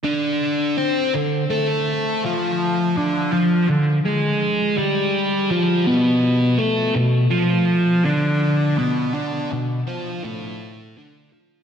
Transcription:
\new Staff \with { instrumentName = "Distorted electric guitar" } { \time 4/4 \key d \dorian \tempo 4 = 82 <d d'>4 <c' c''>8 d8 <a a'>4 <f f'>4 | <d d'>8 <f f'>8 d8 <gis gis'>4 <g g'>4 <f f'>8 | <b, b>4 <a a'>8 b,8 <f f'>4 <d d'>4 | <b, b>8 <d d'>8 b,8 <f f'>8 <a, a>4 <d d'>8 <f f'>8 | }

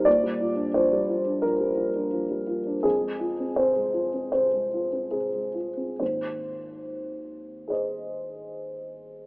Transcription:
<<
  \new Staff \with { instrumentName = "Upright piano" } { \time 4/4 \key aes \lydian \tempo 4 = 76 << { d''4 c''4 bes'2 | aes'4 c''4 c''4 aes'8 r8 | c''1 | } \\ { r1 | r1 | r2 <aes' c'' ees''>2 | } >> }
  \new Staff \with { instrumentName = "Upright piano" } { \clef bass \time 4/4 \key aes \lydian bes,16 g16 f'16 d'16 f16 g16 f'16 d'16 f16 g16 f'16 d'16 f16 g16 f'16 d'16 | f,16 aes16 f'16 c'16 c16 aes16 f'16 c'16 c16 aes16 f'16 c'16 c16 aes16 f'16 c'16 | <aes,, ees,>1 | }
>>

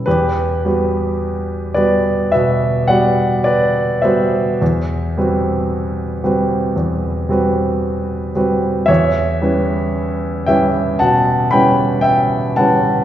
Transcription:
\new Staff \with { instrumentName = "Grand piano" } { \time 4/4 \key e \minor \tempo 4 = 56 << { <g' b'>4. <b' d''>8 <b' e''>8 <d'' fis''>8 <b' d''>8 <c'' e''>8~ | <c'' e''>2.~ <c'' e''>8 r8 | <cis'' e''>4. <e'' g''>8 <fis'' a''>8 <g'' b''>8 <e'' g''>8 <fis'' a''>8 | } \\ { e,8 <g b fis' b'>4 <g b fis'>8 b,8 <g b fis' b'>4 <g b fis' b'>8 | e,8 <g c' fis' b'>4 <g c' fis' b'>8 e,8 <g c' fis' b'>4 <g c' fis' b'>8 | e,8 <g cis' e' b'>4 <g cis' e' b'>8 b,8 <g cis' e' b'>4 <g cis' e' b'>8 | } >> }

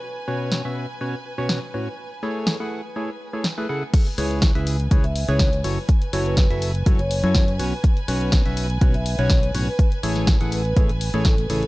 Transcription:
<<
  \new Staff \with { instrumentName = "Violin section" } { \time 4/4 \key b \dorian \tempo 4 = 123 <b' gis''>1~ | <b' gis''>1 | <b' gis''>1~ | <b' gis''>1~ |
<b' gis''>1~ | <b' gis''>1 | }
  \new Staff \with { instrumentName = "Vibraphone" } { \time 4/4 \key b \dorian r1 | r1 | r2 r16 e''8 cis''16 r4 | r8. b'8. r8. cis''4 r8. |
r2 r16 e''8 cis''16 cis''16 r8 b'16 | r4. b'16 b'16 r8. a'16 a'16 r16 a'8 | }
  \new Staff \with { instrumentName = "Synth stab" } { \time 4/4 \key b \dorian r8 <b, cis' fis' b' cis''>8. <b, cis' fis' b' e''>8 r16 <b, cis' fis' b' cis''>16 r8 <b, cis' fis' b' cis''>8 r16 <a, cis' fis' b' cis''>16 r16 | r8 <a e' gis' a' cis''>8. <a e' gis' a' fis''>8 r16 <a e' gis' a' cis''>16 r8 <a e' gis' a' cis''>16 r16 <a e' gis' a' b'>16 <cis e' gis' a' fis''>16 r16 | r8 <cis e' gis' b' cis''>8. <cis e' gis' b' e''>8 r16 <cis e' gis' b' cis''>16 r8 <cis e' gis' b' cis''>8 r16 <fis e' fis' a' cis''>16 r16 | r8 <fis e' fis' a' cis''>8. <fis e' fis' a' e''>8 r16 <fis e' fis' a' cis''>16 r8 <fis e' fis' a' cis''>8 r16 <b, cis' fis' b' cis''>16 r16 |
r8 <b, cis' fis' b' cis''>8. <b, cis' fis' b' e''>8 r16 <b, cis' fis' b' cis''>16 r8 <b, cis' fis' b' cis''>8 r16 <a, cis' fis' b' cis''>16 r16 | r8 <a e' gis' a' cis''>8. <a e' gis' a' fis''>8 r16 <a e' gis' a' cis''>16 r8 <a e' gis' a' cis''>8 r16 <cis e' gis' a' cis''>16 r16 | }
  \new Staff \with { instrumentName = "Fingered electric bass" } { \clef bass \time 4/4 \key b \dorian r1 | r1 | r8 cis,8. cis,8. cis,8. cis,8. fis,,16 r16 | r8 fis,,8. fis,,8. fis,,8. fis,8. b,,16 r16 |
r8 b,,8. b,,8. b,,8. b,,8. b,,16 r16 | r8 a,,8. a,,8. r8. a,,8. a,,16 r16 | }
  \new DrumStaff \with { instrumentName = "Drums" } \drummode { \time 4/4 r4 sn4 r4 sn4 | r4 sn4 r4 sn4 | <cymc hh bd>16 hh16 hho16 hh16 <hh bd sn>16 hh16 hho16 hh16 <hh bd>16 hh16 hho16 hh16 <hh bd sn>16 hh16 hho8 | <hh bd>16 hh16 hho16 hh16 <hh bd sn>16 hh16 hho16 hh16 <hh bd>16 hh16 hho16 hh16 <hh bd sn>16 hh16 hho8 |
<hh bd>16 hh16 hho16 hh16 <hh bd sn>16 hh16 hho16 hh16 <hh bd>16 hh16 hho16 hh16 <hh bd sn>16 hh16 hho8 | <hh bd>16 hh16 hho16 <hh sn>16 <hh bd sn>16 hh16 hho16 hh16 <hh bd>16 hh16 hho16 hh16 <hh bd sn>16 hh16 hho16 hh16 | }
>>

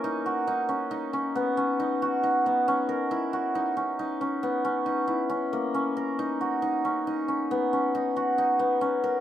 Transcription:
\new Staff \with { instrumentName = "Hammered dulcimer" } { \time 7/4 \key b \major \tempo 4 = 137 dis'8 fis'8 dis'8 cis'8 dis'8 cis'8 b8 cis'8 dis'8 fis'8 dis'8 b8 cis'8 ais'8 | e'8 fis'8 dis'8 cis'8 dis'8 cis'8 b8 cis'8 dis'8 e'8 cis'8 ais8 cis'8 ais'8 | dis'8 fis'8 dis'8 cis'8 dis'8 cis'8 b8 cis'8 dis'8 fis'8 dis'8 b8 cis'8 ais'8 | }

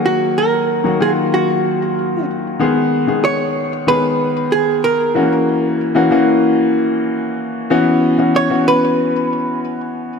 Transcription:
<<
  \new Staff \with { instrumentName = "Hollow-body jazz guitar" } { \time 4/4 \key fis \mixolydian \tempo 4 = 94 fis'8 ais'4 gis'8 fis'4. r8 | r4 cis''4 b'4 gis'8 ais'8~ | ais'2. r4 | r4 cis''8 b'2~ b'8 | }
  \new Staff \with { instrumentName = "Grand piano" } { \time 4/4 \key fis \mixolydian <dis fis ais fis'>4 r16 <dis fis ais fis'>16 <dis fis ais eis' fis'>4. r4 | <dis gis b gis'>8 r16 <dis gis b gis'>4 r16 <dis gis b gis'>4. r8 | <e gis ais cis' fis'>4 r16 <e ais cis' fis'>16 <e ais cis' fis'>4. r4 | <e b cis' fis'>8 r16 <e b cis' fis'>8 <e b cis' fis'>4. r4 r16 | }
>>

